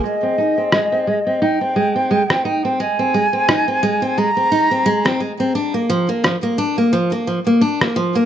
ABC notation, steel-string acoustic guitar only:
X:1
M:4/4
L:1/16
Q:"Swing 16ths" 1/4=87
K:Ablyd
V:1 name="Steel-string acoustic guitar"
A, C E C A, C A, C E C A, C A, C E C | A, C A, C E C A, C A, C E C A, C A, C | D B, F, B, F, B, D B, F, B, F, B, D B, F, B, |]